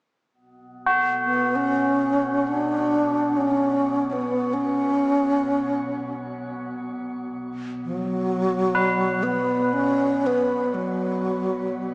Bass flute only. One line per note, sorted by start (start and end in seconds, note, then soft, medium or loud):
1.25 1.57 B3 medium
1.56 2.50 C#4 medium
2.48 3.38 D4 medium
3.37 4.10 C#4 medium
4.10 4.55 B3 medium
4.10 4.13 C#4 soft
4.54 6.13 C#4 medium
7.85 9.25 F#3 medium
9.23 9.75 B3 medium
9.73 10.28 C#4 medium
10.26 10.76 B3 medium
10.74 11.94 F#3 medium